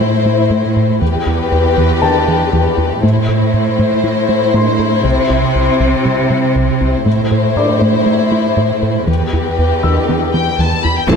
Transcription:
Already playing: cello section A2, violin section E4 C5, felt piano G5
0.01 analog synth bass A3, synth arpeggio sound E4
0.26 analog synth bass A3, synth arpeggio sound E4
0.50 analog synth bass A2, synth arpeggio sound A3
0.76 analog synth bass A2, synth arpeggio sound A4
1.01 cello section E2, analog synth bass E2, synth arpeggio sound E3, violin section G4 B4
1.26 analog synth bass E2, synth arpeggio sound E4
1.52 analog synth bass E2
1.77 analog synth bass E2, synth arpeggio sound E3
2.02 analog synth bass E3, synth arpeggio sound B3, felt piano A5
2.28 analog synth bass E3, synth arpeggio sound B3
2.53 analog synth bass E2, synth arpeggio sound E3
2.78 analog synth bass E2, synth arpeggio sound E4
3.03 cello section A2, analog synth bass A2, synth arpeggio sound A3, violin section E4 C5
3.29 analog synth bass A2, synth arpeggio sound A4
3.54 analog synth bass A2
3.79 analog synth bass A2, synth arpeggio sound A3
4.04 analog synth bass A3, synth arpeggio sound E4
4.29 analog synth bass A3, synth arpeggio sound E4
4.54 analog synth bass A2, synth arpeggio sound A3, felt piano C6
4.79 analog synth bass A2, synth arpeggio sound A4
5.03 analog synth bass C2, cello section C3, synth arpeggio sound C3
5.30 analog synth bass C2, synth arpeggio sound C4
5.55 analog synth bass C2
5.80 analog synth bass C2, synth arpeggio sound C3
6.05 analog synth bass C3, synth arpeggio sound G3
6.30 analog synth bass C3, synth arpeggio sound G3
6.56 analog synth bass C2, synth arpeggio sound C3
6.81 analog synth bass C2, synth arpeggio sound C4
7.06 analog synth bass A2, cello section A2, synth arpeggio sound A3, violin section E4 C5
7.31 analog synth bass A2, synth arpeggio sound A4
7.56 analog synth bass A2, felt piano D5 D6
7.82 analog synth bass A2, synth arpeggio sound A3
8.06 analog synth bass A3, synth arpeggio sound E4
8.32 analog synth bass A3, synth arpeggio sound E4
8.57 analog synth bass A2, synth arpeggio sound A3
8.83 analog synth bass A2, synth arpeggio sound A4
9.07 analog synth bass E2, cello section E2, synth arpeggio sound E3, violin section G4 B4
9.33 analog synth bass E2, synth arpeggio sound E4
9.58 analog synth bass E2
9.83 analog synth bass E2, synth arpeggio sound E3, felt piano E6
10.09 analog synth bass E3, synth arpeggio sound B3
10.33 analog synth bass E3, synth arpeggio sound B3, violin section G5
10.59 analog synth bass E2, synth arpeggio sound E3, violin section A5
10.84 analog synth bass E2, synth arpeggio sound E4, violin section B5
10.97 violin section G5
11.09 double bass section A1, tuba A1, analog synth bass A2, trombone section E3 A3, viola section E3 C4, synth arpeggio sound A3, french horn section C4 E4, violin section E4 C5 A5, taiko, impact

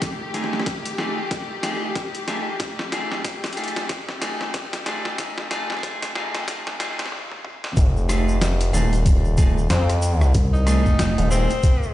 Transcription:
Already playing: string section F2 D#3 A3 G4
0.02 kick, snare, closed hi-hat
0.34 clean electric guitar A3 D#4 F4 G#4, snare, closed hi-hat
0.44 snare
0.53 snare
0.60 snare
0.66 kick, snare, closed hi-hat
0.85 closed hi-hat
0.98 clean electric guitar A3 D#4 F4 G#4, snare
1.31 kick, snare, closed hi-hat
1.63 clean electric guitar A3 D#4 F4 G#4, snare, closed hi-hat
1.95 kick, snare, closed hi-hat
2.15 closed hi-hat
2.28 clean electric guitar A3 D#4 F4 G#4, snare, closed hi-hat
2.60 kick, snare, closed hi-hat
2.79 snare
2.92 clean electric guitar A3 D#4 F4 G#4, snare, closed hi-hat
3.12 snare
3.24 kick, snare, closed hi-hat
3.44 snare, closed hi-hat
3.46 closed hi-hat
3.53 closed hi-hat
3.57 clean electric guitar A3 D#4 F4 G#4, closed hi-hat
3.64 closed hi-hat
3.68 closed hi-hat
3.76 snare, closed hi-hat
3.89 kick, snare, closed hi-hat
4.09 snare
4.21 clean electric guitar A3 D#4 F4 G#4, snare, closed hi-hat
4.41 snare
4.54 kick, snare, closed hi-hat
4.73 snare, closed hi-hat
4.86 clean electric guitar A3 D#4 F4 G#4, snare, closed hi-hat
5.05 snare
5.18 clean electric guitar A3 D#4 F4 G#4, kick, snare, closed hi-hat
5.38 snare
5.50 clean electric guitar A3 D#4 F4 G#4, snare, closed hi-hat
5.70 snare
5.72 snare
5.77 snare
5.79 snare
5.81 clean electric guitar A3 D#4, kick, snare
5.83 clean electric guitar F4 G#4, snare, closed hi-hat
6.02 snare, closed hi-hat
6.15 clean electric guitar A3 D#4 F4 G#4, snare
6.35 snare, closed hi-hat
6.47 clean electric guitar A3 D#4 F4 G#4, kick, snare, closed hi-hat
6.67 snare
6.79 clean electric guitar A3 D#4 F4 G#4, snare, closed hi-hat
6.99 snare, closed hi-hat
7.06 snare
7.12 high tom
7.31 high tom
7.45 mid tom
7.64 snare
7.77 analog synth bass F1, kick, closed hi-hat, shaker
7.97 shaker
8.09 clean electric guitar A3 D#4 F4 G#4, cross-stick, closed hi-hat, shaker
8.29 shaker
8.41 snare, closed hi-hat, shaker
8.60 closed hi-hat, shaker
8.73 analog synth bass D#1, clean electric guitar A3 D#4 F4 G#4, shaker
8.93 closed hi-hat, shaker
9.06 kick, closed hi-hat, shaker
9.25 shaker
9.38 clean electric guitar A3 D#4 F4 G#4, kick, closed hi-hat, shaker
9.58 shaker
9.70 analog synth bass F2, tenor saxophone C4, snare, closed hi-hat, shaker
9.90 cross-stick, closed hi-hat, shaker
10.02 closed hi-hat, shaker
10.21 cross-stick, shaker
10.35 fingered electric bass C2, kick, closed hi-hat, shaker
10.53 tenor saxophone D#4, shaker
10.67 clean electric guitar A3 D#4 F4 G#4, cross-stick, closed hi-hat, shaker
10.86 fingered electric bass F1, kick, shaker
10.99 snare, closed hi-hat, shaker
11.18 analog synth bass D#1, closed hi-hat, shaker
11.30 clean electric guitar A3 D#4 F4 G#4, tenor saxophone C4, shaker
11.50 closed hi-hat, shaker
11.63 kick, closed hi-hat, shaker
11.83 shaker

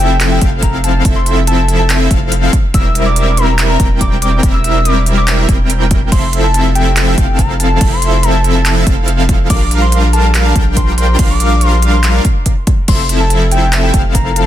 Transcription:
Already playing: sub bass F1, analog polysynth F3 C4 E4 A4 E5
0.00 soft synth lead G5
0.20 clap, closed hi-hat
0.32 soft synth lead G5
0.41 sub bass F1, analog polysynth F3 C4 E4 A4 F5, kick, closed hi-hat
0.63 soft synth lead A#5, kick, closed hi-hat
0.84 soft synth lead A5, closed hi-hat
1.05 sub bass F1, analog polysynth F3 C4 E4 A4 E5, kick, closed hi-hat
1.16 soft synth lead C6
1.26 closed hi-hat
1.47 soft synth lead A5, closed hi-hat
1.68 closed hi-hat
1.79 soft synth lead A5
1.90 clap, closed hi-hat
2.11 sub bass F1, analog polysynth F3 C4 E4 A4 F5, kick, closed hi-hat
2.32 closed hi-hat
2.53 kick, closed hi-hat
2.74 sub bass E1, analog polysynth G3 C4 E4 A#4 E5, soft synth lead E6, kick, closed hi-hat
2.95 closed hi-hat
3.06 soft synth lead D6
3.16 closed hi-hat
3.37 soft synth lead A#5, closed hi-hat
3.59 clap, closed hi-hat
3.69 soft synth lead A#5
3.80 sub bass E1, analog polysynth G3 C4 E4 A#4 G5, kick, closed hi-hat
4.01 soft synth lead D6, kick, closed hi-hat
4.22 soft synth lead D6, closed hi-hat
4.43 sub bass E1, analog polysynth G3 C4 E4 A#4 E5, kick, closed hi-hat
4.54 soft synth lead E6
4.64 closed hi-hat
4.85 soft synth lead D6, closed hi-hat
5.06 closed hi-hat
5.17 soft synth lead D6
5.28 clap, closed hi-hat
5.49 sub bass E1, analog polysynth G3 C4 E4 A#4 G5, kick, closed hi-hat
5.70 closed hi-hat
5.91 kick, closed hi-hat
6.12 sub bass F1, analog polysynth F3 C4 E4 A4 E5, soft synth lead C6, kick, closed hi-hat, crash
6.33 closed hi-hat
6.44 soft synth lead A5
6.54 closed hi-hat
6.75 soft synth lead G5, closed hi-hat
6.96 clap, closed hi-hat
7.07 soft synth lead G5
7.18 sub bass F1, analog polysynth F3 C4 E4 A4 F5, kick, closed hi-hat
7.39 soft synth lead A#5, kick, closed hi-hat
7.60 soft synth lead A5, closed hi-hat
7.81 sub bass F1, analog polysynth F3 C4 E4 A4 E5, kick, closed hi-hat, crash
7.92 soft synth lead C6
8.02 closed hi-hat
8.23 soft synth lead A5, closed hi-hat
8.44 closed hi-hat
8.55 soft synth lead A5
8.65 clap, closed hi-hat
8.87 sub bass F1, analog polysynth F3 C4 E4 A4 F5, kick, closed hi-hat
9.08 closed hi-hat
9.29 kick, closed hi-hat
9.50 sub bass A#1, analog polysynth G3 D4 F4 A#4 F5, soft synth lead D6, kick, closed hi-hat, crash
9.71 closed hi-hat
9.82 soft synth lead C6
9.92 closed hi-hat
10.13 soft synth lead A5, closed hi-hat
10.34 clap, closed hi-hat
10.45 soft synth lead A5
10.56 sub bass A#1, analog polysynth G3 D4 F4 A#4 G5, kick, closed hi-hat
10.77 soft synth lead C6, kick, closed hi-hat
10.98 soft synth lead C6, closed hi-hat
11.19 sub bass A#1, analog polysynth G3 D4 F4 A#4 F5, kick, closed hi-hat, crash
11.30 soft synth lead D6
11.40 closed hi-hat
11.61 soft synth lead C6, closed hi-hat
11.82 closed hi-hat
11.93 soft synth lead C6
12.03 clap, closed hi-hat
12.25 kick, closed hi-hat
12.46 kick, closed hi-hat
12.67 kick, closed hi-hat
12.88 sub bass F1, analog polysynth F3 C4 E4 A4 E5, soft synth lead C6, kick, closed hi-hat, crash
13.09 closed hi-hat
13.20 soft synth lead A5
13.30 closed hi-hat
13.52 soft synth lead G5, closed hi-hat
13.73 clap, closed hi-hat
13.83 soft synth lead G5
13.94 sub bass F1, analog polysynth F3 C4 E4 A4 F5, kick, closed hi-hat
14.15 soft synth lead A#5, kick, closed hi-hat
14.36 soft synth lead A5, closed hi-hat

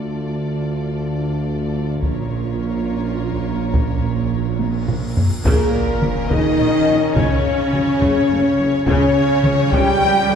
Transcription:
Already playing: double bass section D2, cello section D2, tuba D2, french horn section A3 F4, viola section F4, violin section A4 D5
2.01 double bass section A#1, tuba A#1, cello section A#2, french horn section C#4 F4, viola section F4, violin section A#4 C#5, taiko
3.31 taiko
3.74 taiko, cymbal swell
4.59 taiko high
4.88 taiko low-mid
5.17 taiko low
5.43 double bass section A#1, tuba A#1, cello section A#2, trombone section A#2, viola section C#3 C#4, french horn section A#3, flute section A#4, violin section A#4, taiko, sub drop
6.01 double bass section A#1, tuba A#1, viola section F3, taiko mid
6.29 double bass section A#1, tuba A#1, viola section C#3, trombone section D#3, cello section D#3, french horn section D#4, violin section D#5, flute section D#5, taiko
6.58 double bass section A#1, tuba A#1, viola section A#3
6.87 double bass section A#1, tuba A#1, viola section F3
7.14 double bass section F#1, tuba F#1, trombone section C#3, viola section C#3, cello section C#3, french horn section C#4, violin section C#5, flute section C#5, taiko
7.71 double bass section F#1, tuba F#1, viola section F#3, taiko mid
8.00 double bass section F#1, tuba F#1, viola section C#3, taiko
8.29 double bass section F#1, tuba F#1, viola section A3
8.58 double bass section F#1, tuba F#1, viola section F#3
8.83 double bass section C#2, tuba C#2, trombone section C#3, cello section C#3, viola section C#3 C#4, french horn section C#4, violin section C#5, flute section C#5, taiko
9.44 double bass section C#2, tuba C#2, viola section C#3, taiko mid
9.70 double bass section C#2, tuba C#2, viola section C#3, trombone section G3, cello section G3, french horn section G4, violin section G5, flute section G5, taiko
10.00 double bass section C#2, tuba C#2, viola section F3
10.27 double bass section C#2, tuba C#2, viola section C#3

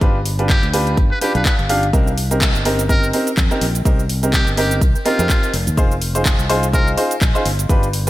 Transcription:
0.01 fingered electric bass G1, upright piano D4 F4 G4 B4, kick, closed hi-hat
0.26 open hi-hat
0.39 upright piano D4 F4 G4 B4, closed hi-hat
0.49 muted trumpet G4, kick, clap, closed hi-hat
0.63 fingered electric bass D2, closed hi-hat
0.73 upright piano D4 F4 G4 B4, open hi-hat
0.87 closed hi-hat
0.97 fingered electric bass G1, kick, closed hi-hat
1.11 muted trumpet B4
1.21 upright piano D4 F4 G4 B4, muted trumpet G4, open hi-hat
1.35 fingered electric bass B1, upright piano D4 F4 G4 F5, muted trumpet B4, closed hi-hat
1.45 muted trumpet B4, kick, clap, closed hi-hat
1.59 fingered electric bass G1, closed hi-hat
1.69 upright piano D4 F4 G4 F5, open hi-hat
1.83 closed hi-hat
1.93 fingered electric bass C2, upright piano C4 D#4 G4 A#4, kick, closed hi-hat, shaker
2.08 shaker
2.18 open hi-hat
2.31 upright piano C4 D#4 G4 A#4, closed hi-hat, shaker
2.41 kick, clap, closed hi-hat, shaker
2.55 fingered electric bass G1, closed hi-hat, shaker
2.65 upright piano C4 D#4 G4 A#4, open hi-hat
2.79 closed hi-hat, shaker
2.89 upright piano C4 D#4 G4 A#4, muted trumpet A#4, kick, closed hi-hat, shaker
3.03 shaker
3.13 upright piano C4 D#4 G4 A#4, open hi-hat
3.27 closed hi-hat, shaker
3.37 fingered electric bass F2, kick, clap, closed hi-hat, shaker
3.51 upright piano C4 D#4 G4 A#4, closed hi-hat, shaker
3.61 fingered electric bass A#1, open hi-hat
3.75 closed hi-hat, shaker
3.85 fingered electric bass C2, upright piano C4 D#4 G4 A#4, kick, closed hi-hat, shaker
3.99 shaker
4.09 open hi-hat
4.23 upright piano C4 D#4 G4 A#4, closed hi-hat, shaker
4.33 muted trumpet G4, kick, clap, closed hi-hat, shaker
4.47 fingered electric bass G1, closed hi-hat, shaker
4.57 upright piano C4 D#4 G4 A#4, muted trumpet G4, open hi-hat
4.71 closed hi-hat, shaker
4.81 fingered electric bass C2, kick, closed hi-hat, shaker
4.96 shaker
5.05 upright piano C4 D#4 G4 A#4, muted trumpet F4, open hi-hat
5.19 fingered electric bass F2, upright piano C4 D#4 G4 A#4, closed hi-hat, shaker
5.29 kick, clap, closed hi-hat, shaker
5.43 closed hi-hat, shaker
5.54 fingered electric bass F1, open hi-hat
5.67 fingered electric bass D#2, closed hi-hat, shaker
5.77 fingered electric bass F1, upright piano D#4 F4 G#4 C5, kick, closed hi-hat, shaker
5.92 shaker
6.02 open hi-hat
6.15 upright piano D#4 F4 G#4 C5, closed hi-hat, shaker
6.25 kick, clap, closed hi-hat, shaker
6.39 fingered electric bass C2, closed hi-hat, shaker
6.49 upright piano D#4 F4 G#4 C5, open hi-hat
6.63 closed hi-hat, shaker
6.73 upright piano D#4 F4 G#4 C5, muted trumpet A#4, kick, closed hi-hat, shaker
6.88 shaker
6.97 upright piano D#4 F4 G#4 C5, open hi-hat
7.11 closed hi-hat, shaker
7.21 fingered electric bass A#1, kick, clap, closed hi-hat, shaker
7.35 upright piano D#4 F4 G#4 C5, closed hi-hat, shaker
7.45 fingered electric bass G1, open hi-hat
7.59 closed hi-hat, shaker
7.69 fingered electric bass G1, upright piano D4 F4 G4 B4, kick, closed hi-hat, shaker
7.83 closed hi-hat, shaker
7.93 open hi-hat
8.07 upright piano F4

